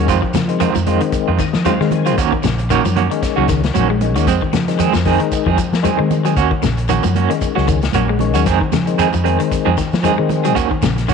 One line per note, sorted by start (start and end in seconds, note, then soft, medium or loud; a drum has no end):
0.08 0.21 F2 medium
0.08 0.23 D#3 medium
0.08 0.22 G#3 medium
0.08 0.22 C4 medium
0.08 0.21 F4 medium
0.08 kick medium
0.08 closed hi-hat medium
0.08 high conga soft
0.08 shekere medium
0.22 0.32 F3 medium
0.22 kick medium
0.34 0.56 C#3 medium
0.34 0.69 F3 medium
0.34 snare medium
0.34 closed hi-hat medium
0.34 high conga medium
0.34 shekere medium
0.48 0.70 D#3 medium
0.48 0.70 G#3 medium
0.48 0.71 C4 medium
0.48 muted clean electric guitar stroke soft
0.48 closed hi-hat medium
0.48 shekere soft
0.60 0.72 D#3 medium
0.60 0.75 D#3 medium
0.60 0.74 G#3 medium
0.60 0.74 C4 loud
0.60 0.74 F4 medium
0.60 closed hi-hat medium
0.60 high conga soft
0.60 low conga medium
0.60 shekere medium
0.75 0.98 F2 medium
0.75 0.96 F3 medium
0.75 muted clean electric guitar stroke soft
0.75 high conga medium
0.75 shekere medium
0.86 1.01 D#3 medium
0.86 1.31 D#3 medium
0.86 1.01 G#3 medium
0.86 1.32 G#3 medium
0.86 1.01 C4 medium
0.86 1.32 C4 loud
0.86 1.01 F4 medium
0.86 closed hi-hat medium
0.86 high conga medium
0.86 low conga medium
0.86 shekere soft
1.00 1.22 D#3 medium
1.00 muted clean electric guitar stroke soft
1.00 closed hi-hat soft
1.12 muted clean electric guitar stroke soft
1.12 kick medium
1.12 closed hi-hat medium
1.12 high conga soft
1.12 shekere medium
1.28 1.38 F2 medium
1.28 1.38 D#3 medium
1.28 1.38 G#3 medium
1.28 1.39 C4 medium
1.28 1.38 F4 medium
1.38 1.60 D#3 medium
1.38 1.64 D#5 medium
1.38 muted clean electric guitar stroke soft
1.38 kick medium
1.38 snare soft
1.38 closed hi-hat soft
1.38 shekere loud
1.53 1.64 F3 loud
1.53 snare medium
1.53 shekere soft
1.65 1.80 D#3 medium
1.65 1.74 D#3 medium
1.65 1.77 F#3 medium
1.65 1.79 G#3 medium
1.65 1.74 G#3 medium
1.65 1.79 C4 medium
1.65 1.74 C4 loud
1.65 1.79 F4 medium
1.65 1.90 F5 medium
1.65 muted fingered electric bass stroke soft
1.65 closed hi-hat medium
1.65 high conga medium
1.65 shekere medium
1.80 2.18 D#3 medium
1.80 2.01 G#3 medium
1.80 2.18 G#3 medium
1.80 2.18 C4 medium
1.80 muted clean electric guitar stroke soft
1.80 snare soft
1.91 2.16 G#5 medium
1.91 muted clean electric guitar stroke soft
1.91 closed hi-hat medium
1.91 high conga medium
1.91 low conga medium
1.91 shekere soft
2.06 2.16 F#3 medium
2.06 2.18 G#3 soft
2.06 2.18 C4 medium
2.06 2.18 F4 medium
2.06 closed hi-hat soft
2.06 shekere medium
2.18 2.30 D#2 loud
2.18 2.32 D#3 medium
2.18 2.32 A#3 medium
2.18 2.32 C#4 medium
2.18 2.32 F#4 medium
2.18 kick medium
2.18 closed hi-hat medium
2.18 shekere medium
2.32 2.42 D#3 medium
2.32 muted clean electric guitar stroke soft
2.32 kick medium
2.43 2.79 A#1 medium
2.43 2.65 C#3 medium
2.43 snare medium
2.43 closed hi-hat medium
2.43 high conga medium
2.43 shekere medium
2.58 muted clean electric guitar stroke soft
2.58 closed hi-hat soft
2.58 shekere soft
2.70 2.82 D#3 medium
2.70 2.85 D#3 medium
2.70 2.84 A#3 loud
2.70 2.83 C#4 loud
2.70 2.83 F#4 medium
2.70 closed hi-hat medium
2.70 high conga soft
2.70 low conga medium
2.70 shekere medium
2.84 3.08 F#2 medium
2.84 3.06 F3 medium
2.84 muted clean electric guitar stroke soft
2.84 high conga medium
2.84 shekere medium
2.96 3.11 D#3 medium
2.96 3.10 A#3 medium
2.96 3.09 C#4 medium
2.96 3.09 F#4 medium
2.96 closed hi-hat soft
2.96 high conga medium
2.96 low conga medium
2.96 shekere soft
3.10 3.62 D#3 medium
3.10 3.32 D#3 medium
3.10 3.62 G#3 medium
3.10 3.62 C#4 medium
3.10 muted clean electric guitar stroke soft
3.10 closed hi-hat medium
3.22 muted clean electric guitar stroke soft
3.22 muted fingered electric bass stroke soft
3.22 kick medium
3.22 snare soft
3.22 closed hi-hat medium
3.22 high conga soft
3.22 shekere medium
3.36 3.70 C#2 medium
3.36 3.47 D#3 medium
3.36 3.47 F#3 medium
3.36 3.47 A#3 medium
3.36 3.48 C#4 medium
3.36 3.48 F#4 medium
3.48 3.70 D#3 medium
3.48 muted clean electric guitar stroke soft
3.48 kick medium
3.48 snare soft
3.48 closed hi-hat medium
3.48 shekere medium
3.63 snare medium
3.63 closed hi-hat soft
3.63 shekere soft
3.73 4.17 A#1 medium
3.73 3.89 D#3 medium
3.73 3.87 F#3 medium
3.73 3.89 A#3 medium
3.73 3.88 C#4 medium
3.73 3.88 F#4 medium
3.73 closed hi-hat medium
3.73 high conga medium
3.73 shekere medium
3.89 4.11 G#3 medium
3.89 muted clean electric guitar stroke soft
4.01 4.28 D#3 medium
4.01 4.28 G#3 medium
4.01 4.28 C#4 medium
4.01 muted clean electric guitar stroke soft
4.01 closed hi-hat medium
4.01 high conga medium
4.01 low conga medium
4.01 shekere soft
4.15 4.26 D#2 medium
4.15 4.25 D#3 medium
4.15 4.27 A#3 soft
4.15 4.27 C#4 medium
4.15 4.27 F#4 medium
4.15 closed hi-hat medium
4.15 shekere medium
4.27 4.40 F2 medium
4.27 4.41 G#3 medium
4.27 4.41 C4 medium
4.27 muted clean electric guitar stroke medium
4.27 kick medium
4.27 closed hi-hat medium
4.27 high conga soft
4.27 low conga medium
4.27 shekere medium
4.42 4.51 D#3 medium
4.42 muted clean electric guitar stroke soft
4.42 kick medium
4.53 4.74 C#3 medium
4.53 4.89 F3 medium
4.53 snare medium
4.53 closed hi-hat medium
4.53 high conga medium
4.53 shekere medium
4.68 4.90 D#3 medium
4.68 4.90 G#3 medium
4.68 4.90 C4 medium
4.68 muted clean electric guitar stroke soft
4.68 snare soft
4.68 closed hi-hat medium
4.68 shekere soft
4.79 4.91 D#3 medium
4.79 4.94 G#3 medium
4.79 4.93 C4 medium
4.79 4.93 G#4 medium
4.79 muted clean electric guitar stroke medium
4.79 closed hi-hat medium
4.79 high conga soft
4.79 low conga medium
4.79 shekere medium
4.93 5.17 F2 medium
4.93 5.15 F3 medium
4.93 muted clean electric guitar stroke soft
4.93 snare medium
4.93 high conga medium
4.93 shekere medium
5.05 5.50 D#3 medium
5.05 5.20 D#3 medium
5.05 5.51 G#3 medium
5.05 5.21 G#3 medium
5.05 5.20 C4 medium
5.05 5.51 D#4 loud
5.05 5.20 G#4 medium
5.05 kick medium
5.05 snare soft
5.05 open hi-hat medium
5.05 high conga medium
5.05 low conga medium
5.05 shekere soft
5.19 5.41 D#3 medium
5.19 muted clean electric guitar stroke soft
5.19 closed hi-hat medium
5.31 muted clean electric guitar stroke soft
5.31 kick medium
5.31 closed hi-hat medium
5.31 high conga soft
5.31 shekere medium
5.46 5.56 F2 medium
5.46 5.57 D#3 medium
5.46 5.56 F3 medium
5.46 5.57 G#3 medium
5.46 5.58 C4 medium
5.46 5.58 G#4 medium
5.46 kick medium
5.58 5.79 F3 medium
5.58 muted clean electric guitar stroke soft
5.58 kick medium
5.58 closed hi-hat medium
5.58 shekere loud
5.73 5.83 F3 medium
5.73 snare medium
5.73 shekere soft
5.83 5.92 D#3 medium
5.83 5.99 D#3 medium
5.83 5.96 F#3 medium
5.83 5.92 G#3 medium
5.83 5.99 G#3 medium
5.83 5.92 C4 medium
5.83 5.98 C4 medium
5.83 5.98 G#4 medium
5.83 muted fingered electric bass stroke soft
5.83 closed hi-hat medium
5.83 high conga medium
5.83 shekere medium
5.97 6.36 D#3 medium
5.97 6.38 D#3 medium
5.97 6.36 G#3 medium
5.97 6.20 G#3 medium
5.97 6.36 C4 medium
5.97 muted clean electric guitar stroke soft
6.10 muted clean electric guitar stroke soft
6.10 closed hi-hat medium
6.10 high conga loud
6.10 low conga medium
6.10 shekere soft
6.25 6.34 F#3 medium
6.25 6.36 G#3 soft
6.25 6.36 C4 soft
6.25 6.37 G#4 medium
6.25 closed hi-hat soft
6.25 shekere medium
6.36 6.49 D#2 loud
6.36 6.51 A#3 medium
6.36 6.51 C#4 medium
6.36 6.52 F#4 medium
6.36 kick medium
6.36 closed hi-hat medium
6.36 high conga soft
6.36 shekere medium
6.51 6.60 D#3 medium
6.51 muted clean electric guitar stroke soft
6.51 kick medium
6.62 6.98 A#1 medium
6.62 6.84 C#3 medium
6.62 snare medium
6.62 closed hi-hat medium
6.62 high conga medium
6.62 shekere medium
6.77 muted clean electric guitar stroke soft
6.77 closed hi-hat soft
6.77 shekere soft
6.89 7.01 D#3 medium
6.89 7.04 A#3 medium
6.89 7.04 C#4 medium
6.89 7.03 F#4 medium
6.89 closed hi-hat medium
6.89 high conga soft
6.89 low conga medium
6.89 shekere medium
7.03 7.27 F#2 medium
7.03 7.25 F3 medium
7.03 muted clean electric guitar stroke soft
7.03 high conga medium
7.03 shekere medium
7.15 7.30 A#3 medium
7.15 7.30 C#4 medium
7.15 7.29 F#4 medium
7.15 closed hi-hat soft
7.15 high conga medium
7.15 low conga medium
7.15 shekere soft
7.29 7.81 D#3 medium
7.29 7.51 D#3 medium
7.29 7.81 G#3 medium
7.29 7.81 C#4 medium
7.29 muted clean electric guitar stroke soft
7.29 closed hi-hat medium
7.41 muted fingered electric bass stroke soft
7.41 muted clean electric guitar stroke soft
7.41 kick medium
7.41 closed hi-hat medium
7.41 high conga soft
7.41 shekere medium
7.55 7.89 C#2 medium
7.55 7.66 F#3 medium
7.55 7.67 C#4 medium
7.55 7.67 F#4 medium
7.55 snare soft
7.68 7.89 D#3 medium
7.68 muted clean electric guitar stroke soft
7.68 kick medium
7.68 closed hi-hat soft
7.68 shekere medium
7.82 snare medium
7.82 closed hi-hat soft
7.82 shekere soft
7.93 8.36 A#1 medium
7.93 8.06 F#3 medium
7.93 8.09 A#3 medium
7.93 8.08 C#4 medium
7.93 8.07 F#4 medium
7.93 closed hi-hat medium
7.93 high conga medium
7.93 shekere medium
8.08 8.30 G#3 medium
8.08 muted clean electric guitar stroke soft
8.19 8.47 D#3 medium
8.19 8.47 G#3 medium
8.19 8.47 C#4 medium
8.19 muted clean electric guitar stroke soft
8.19 closed hi-hat medium
8.19 high conga medium
8.19 low conga medium
8.19 shekere soft
8.34 8.46 D#2 medium
8.34 8.45 F#3 medium
8.34 8.46 C#4 soft
8.34 8.46 F#4 medium
8.34 closed hi-hat medium
8.34 shekere medium
8.46 8.59 F2 medium
8.46 8.61 D#3 medium
8.46 8.60 G#3 medium
8.46 8.59 C4 medium
8.46 8.59 G#4 medium
8.46 kick medium
8.46 snare soft
8.46 closed hi-hat medium
8.46 shekere medium
8.60 8.71 D#3 medium
8.60 muted clean electric guitar stroke soft
8.60 kick medium
8.72 8.94 C#3 medium
8.72 9.08 F3 medium
8.72 snare medium
8.72 closed hi-hat medium
8.72 high conga medium
8.72 shekere medium
8.86 9.09 D#3 medium
8.86 9.09 G#3 medium
8.86 9.09 C4 medium
8.86 muted clean electric guitar stroke soft
8.86 closed hi-hat soft
8.86 shekere soft
8.98 9.13 D#3 medium
8.98 9.13 G#3 medium
8.98 9.12 C4 medium
8.98 9.12 G#4 loud
8.98 muted clean electric guitar stroke medium
8.98 closed hi-hat medium
8.98 high conga soft
8.98 shekere medium
9.13 9.37 F2 medium
9.13 9.35 F3 medium
9.13 muted clean electric guitar stroke soft
9.13 high conga medium
9.13 shekere medium
9.24 9.39 D#3 medium
9.24 9.70 D#3 medium
9.24 9.38 G#3 medium
9.24 9.70 G#3 medium
9.24 9.38 C4 medium
9.24 9.70 C4 medium
9.24 9.38 G#4 medium
9.24 closed hi-hat soft
9.24 low conga medium
9.24 shekere soft
9.39 9.61 D#3 medium
9.39 muted clean electric guitar stroke soft
9.39 closed hi-hat medium
9.51 muted clean electric guitar stroke soft
9.51 kick medium
9.51 closed hi-hat medium
9.51 high conga soft
9.51 shekere medium
9.65 9.77 F2 medium
9.65 9.76 D#3 medium
9.65 9.75 F3 medium
9.65 9.76 G#3 medium
9.65 9.76 C4 medium
9.65 9.77 G#4 medium
9.77 9.99 D#3 medium
9.77 muted clean electric guitar stroke soft
9.77 kick medium
9.77 snare soft
9.77 closed hi-hat medium
9.77 shekere medium
9.92 10.03 F3 loud
9.92 snare medium
9.92 shekere soft
10.02 10.18 D#3 medium
10.02 10.12 D#3 medium
10.02 10.16 F#3 medium
10.02 10.17 G#3 medium
10.02 10.12 G#3 medium
10.02 10.16 C4 medium
10.02 10.13 C4 loud
10.02 10.16 G#4 medium
10.02 muted fingered electric bass stroke soft
10.02 closed hi-hat medium
10.02 high conga medium
10.02 shekere medium
10.18 10.57 D#3 medium
10.18 10.56 D#3 medium
10.18 10.39 G#3 medium
10.18 10.57 G#3 medium
10.18 10.57 C4 medium
10.18 muted clean electric guitar stroke soft
10.29 muted clean electric guitar stroke soft
10.29 closed hi-hat soft
10.29 high conga loud
10.29 low conga medium
10.29 shekere soft
10.43 10.54 F#3 medium
10.43 10.55 G#3 soft
10.43 10.55 C4 soft
10.43 10.55 G#4 medium
10.43 closed hi-hat medium
10.43 shekere medium
10.54 10.69 D#2 loud
10.54 10.70 D#3 medium
10.54 10.70 A#3 medium
10.54 10.69 C#4 medium
10.54 10.69 F#4 medium
10.54 kick medium
10.54 closed hi-hat medium
10.54 high conga soft
10.54 shekere medium
10.70 10.80 D#3 medium
10.70 muted clean electric guitar stroke soft
10.70 kick medium
10.82 11.14 A#1 medium
10.82 11.04 C#3 medium
10.82 snare medium
10.82 closed hi-hat medium
10.82 high conga loud
10.82 shekere medium
10.96 muted clean electric guitar stroke soft
10.96 snare soft
10.96 closed hi-hat soft
10.96 shekere soft
11.08 11.14 D#3 medium
11.08 11.14 A#3 medium
11.08 11.14 C#4 medium
11.08 11.14 F#4 medium
11.08 muted clean electric guitar stroke medium
11.08 closed hi-hat medium
11.08 shekere medium